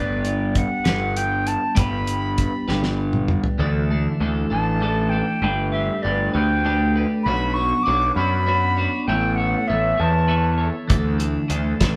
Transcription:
Already playing: G1 G3 B3 D4 G4 B4 D5
0.25 closed hi-hat
0.55 F#5, kick, closed hi-hat
0.84 G1 G3 B3 D4 G4 B4, snare, closed hi-hat
1.17 G5, closed hi-hat
1.47 A5, closed hi-hat
1.75 G1 G3 B3 D4 G4 B4 B5, kick, closed hi-hat
2.07 closed hi-hat
2.38 kick, closed hi-hat
2.68 G1 G3 B3 D4 G4 B4, snare
2.83 snare
3.13 mid tom
3.28 mid tom
3.44 floor tom
3.58 D2 D3 E3 A3 D4 A4
3.91 A3 D4 A4
4.20 D2 E3 A3 D4 A4
4.50 A1 A3 D4 A4 A5
4.80 E3 A3 D4 A4
5.09 D4 A4 G5
5.14 A3
5.42 G1 G3 A3 D4 G4 B4
5.71 D4 G4 B4 E5
6.02 G1 A3 D4 G4 B4 D5
6.34 D2 D4 G4 B4 G5
6.65 A3 D4 G4 B4
6.96 D4 G4 B4
7.23 B1 B2 F#3 B3 D4 B5
7.28 F#4 C#5
7.54 F#4 C#5 C#6
7.58 B3 D4
7.83 B3 D6
7.87 B1 D4 F#4 C#5
8.15 F#2 B3 D4 F#4 C#5 B5
8.46 B3 D4 F#4 C#5
8.77 B3 D4 F#4 C#5
9.07 A1 A3 B3 E4 A4 C#5 G5
9.36 A4 C#5 F#5
9.40 E4
9.67 A1 B3 E4 A4 C#5 E5
9.98 E2 E4 A4 C#5 A5
10.28 B3 E4 A4 C#5
10.58 E4 A4 C#5
10.87 D2 D3 E3 A3 D4 A4, kick, closed hi-hat
11.18 A3 D4 A4, closed hi-hat
11.48 D2 E3 A3 D4 A4, closed hi-hat
11.80 A1 A3 D4 A4, kick, snare, closed hi-hat

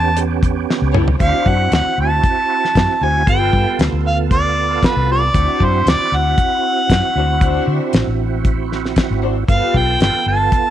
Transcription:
Already playing: E2 B3 C#4 G4 A5
0.17 closed hi-hat
0.43 kick, closed hi-hat
0.70 snare
0.82 C#2
0.94 E4 G4 A4 C#5, mid tom
1.08 floor tom
1.19 D2 C4 D4 E4 F#4 C5 F5, kick, closed hi-hat
1.46 F#2 F#5, kick
1.72 D2 F#5, snare, closed hi-hat
1.98 D2 A5
2.24 kick, closed hi-hat
2.65 snare
2.75 F#2, kick, snare, closed hi-hat
3.01 D2 D4 F#4 C5 G#5
3.26 G1 B3 F4 G4 A4 B4 G5, kick, closed hi-hat
3.53 G2, kick
3.79 D2, snare, closed hi-hat
3.92 D2
4.07 F5
4.31 D5, kick, closed hi-hat
4.83 B4, kick, snare, closed hi-hat
4.96 C2
5.09 F4 G4 B4 D5
5.34 D2 C4 D4 E4 F#4 C5, kick, closed hi-hat
5.60 F#2 C5, kick
5.86 D2 D5, snare, closed hi-hat
6.12 D2 F#5
6.38 kick, closed hi-hat
6.90 F#2, kick, snare, closed hi-hat
7.16 D2 D4 F#4 C5
7.41 D4 F#4 C5, kick, closed hi-hat
7.67 D3
7.93 A1, snare, closed hi-hat
8.07 A1
8.45 kick, closed hi-hat
8.72 snare
8.85 snare
8.96 kick, snare, closed hi-hat
9.10 G#1
9.22 D4 F#4 C5
9.48 G1 B3 F4 G4 A4 B4 F5, kick, closed hi-hat
9.74 B1 G5, kick
10.00 G1 G5, snare, closed hi-hat
10.26 G1 A5
10.52 kick, closed hi-hat

